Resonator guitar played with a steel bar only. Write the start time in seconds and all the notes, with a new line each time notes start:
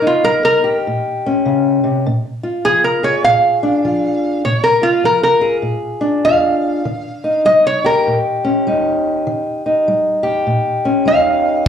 0.07 F4
0.24 A#4
0.45 A#4
2.65 G#4
2.84 A#4
3.04 C#5
3.24 F5
4.45 C#5
4.64 A#4
4.83 F4
5.05 A#4
5.23 A#4
6.25 F5
7.46 D#5
7.67 C#5
7.86 A#4
11.08 F5